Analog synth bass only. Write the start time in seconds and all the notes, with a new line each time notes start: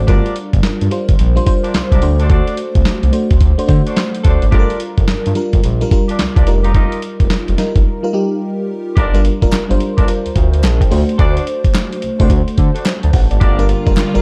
0.08 G1
0.54 G1
0.64 G2
0.81 G2
1.09 G1
1.20 A#1
1.74 C2
1.92 C2
2.03 D2
2.76 C2
3.03 C2
3.31 D2
3.41 D2
3.69 D3
4.25 D2
4.42 G#1
4.52 G1
4.98 G1
5.09 G2
5.26 G2
5.54 G1
5.65 A#1
6.20 C2
6.37 C2
6.47 F1
7.20 F1
7.49 F1
7.76 G1
8.97 G1
9.43 F1
9.53 G1
9.70 G1
9.98 G1
10.26 D2
10.36 D2
10.64 A#1
10.91 D2
11.19 D2
11.65 C2
12.03 C2
12.20 C2
12.30 D2
12.58 D3
13.04 D2
13.14 A1
13.31 G#1
13.41 G1
13.87 F1
13.97 G1
14.15 G1